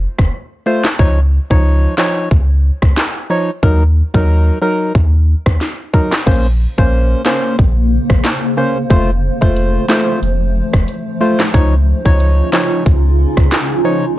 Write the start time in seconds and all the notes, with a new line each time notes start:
0.19 F1, kick, cross-stick
0.66 A3 F4 C5
0.84 snare, clap
0.99 C#2 F3 D#4 C#5, kick
1.50 C#2 F3 D#4 C#5, kick
1.98 F3 D#4 C#5, snare, clap
2.31 C#2, kick
2.82 C#2, kick, cross-stick
2.97 snare, clap
3.30 F3 D#4 C#5
3.63 D#2 F#3 D#4 A#4, kick
4.14 D#2 F#3 D#4 A#4, kick
4.62 F#3 D#4 A#4
4.95 D#2, kick
5.46 D#2, kick, cross-stick
5.61 snare
5.93 F#3 D#4 A#4, kick
6.12 snare, clap
6.26 A#1 C#3 A#3 C#4 C5, kick, crash
6.78 A#1 A#3 C#4 C5, kick
7.26 A#3 C#4 C5, snare, clap
7.59 A#1, kick
8.10 A#1, kick, cross-stick
8.25 snare, clap
8.57 A#3 C#4 C5
8.90 F1 F3 A3 F4 C5, kick, closed hi-hat
9.41 F1 A3 F4 C5, kick
9.56 closed hi-hat
9.89 A3 F4 C5, snare, clap
10.22 F1, closed hi-hat
10.73 F1, kick, cross-stick
10.88 closed hi-hat
11.21 A3 F4 C5
11.40 snare, clap
11.54 C#2 C#3 F3 C#4 D#4 F4 C#5, kick, closed hi-hat
12.05 C#2 F3 D#4 C#5, kick
12.20 closed hi-hat
12.53 F3 D#4 C#5, snare, clap
12.86 C#2, kick, closed hi-hat
13.37 C#2, kick, cross-stick
13.52 snare, clap, closed hi-hat
13.85 F3 D#4 C#5